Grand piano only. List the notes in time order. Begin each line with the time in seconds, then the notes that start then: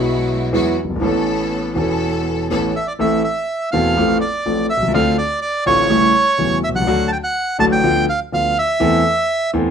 Already playing: B1 B2 F#3 B3 E4 G#4
0.52 E2 E3 F#3 B3 E4 G#4
0.84 F#1
0.90 G1
0.96 G#1
1.00 A1 A2 E3 B3 C#4
1.04 A4
1.74 E1 E2 E3 B3 C#4 A4
2.50 A1 A2 E3 B3 C#4 A4
2.99 A1 A2 E3 A3 C4 A4
3.73 E1 E2 E3 A3 C4 A4
3.97 A1 A2 F3 A3 C4 A4
4.46 A1 A2 F3 A3 C4 A4
4.77 B1
4.82 C2
4.88 C#2
4.94 D2 D3 A3 C4 F4
5.66 A1 A2 D3 A3 C4 F4
5.90 A1 A2 C#3 G3 A3 E4
6.38 E1 E2 C#3 G3 A3 E4
6.69 B1
6.75 C2
6.81 C#2
6.87 D2 D3 F#3 A3 F#4
7.59 A1 A2 D3 F#3 A3 F#4
7.84 D2 D3 F3 B3 F4
8.32 D2 D3 F3 B3 F4
8.80 E2 E3 A3 C4 A4
9.54 E2 E3 A3 C4 A4